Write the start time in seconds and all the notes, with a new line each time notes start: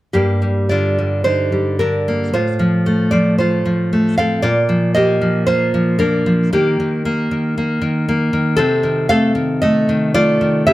0.13 G2 A#3 G4
0.42 G3
0.69 D3 F4 D5
0.99 G3
1.24 D3 D#4 C5
1.52 G3
1.79 D3 D4 A#4
2.08 A#3
2.34 A2 F4 C5
2.59 F3
2.86 A3
3.11 F3 F4 D5
3.38 A3 F4 C5
3.66 F3
3.93 A3
4.18 C4 A4 F5
4.42 A#2 F4 D5
4.69 F3
4.95 A#3 G4 D#5
5.22 F3
5.47 A#3 F4 C5
5.74 F3
5.99 A#3 D4 A#4
6.26 F3
6.53 D#3 A#3 G4
6.80 D#3
7.05 A#3
7.31 D#3
7.58 A#3
7.82 D#3
8.09 A#3
8.33 D#3
8.57 C3 C4 A4
8.83 D#3
9.09 A3 A4 F5
9.35 D#3
9.62 A3 A4 D#5
9.89 D#3
10.14 A3 F4 D5
10.41 D#3
10.67 C#3 G4 E5